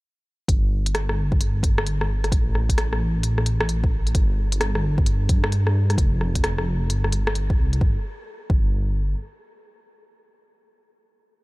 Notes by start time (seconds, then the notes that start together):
0.48 G1, kick, closed hi-hat
0.86 closed hi-hat
0.95 cross-stick, closed hi-hat
1.09 cross-stick
1.32 kick
1.41 closed hi-hat
1.63 kick, closed hi-hat
1.78 cross-stick
1.87 closed hi-hat
2.01 cross-stick
2.24 cross-stick, closed hi-hat
2.32 A1, kick, closed hi-hat
2.55 cross-stick
2.69 kick, closed hi-hat
2.78 cross-stick, closed hi-hat
2.93 cross-stick
3.23 closed hi-hat
3.38 cross-stick
3.46 closed hi-hat
3.61 cross-stick
3.69 closed hi-hat
3.84 kick
4.07 closed hi-hat
4.15 G1, kick, closed hi-hat
4.52 closed hi-hat
4.61 cross-stick, closed hi-hat
4.75 cross-stick
4.98 kick
5.06 closed hi-hat
5.29 G2, kick, closed hi-hat
5.44 cross-stick
5.52 closed hi-hat
5.67 cross-stick
5.90 cross-stick, closed hi-hat
5.98 F1, kick, closed hi-hat
6.21 cross-stick
6.35 kick, closed hi-hat
6.44 cross-stick, closed hi-hat
6.58 cross-stick
6.89 G1, closed hi-hat
7.04 cross-stick
7.12 closed hi-hat
7.27 cross-stick
7.35 closed hi-hat
7.50 kick
7.59 C2
7.73 closed hi-hat
7.81 G1, kick
8.50 G1, kick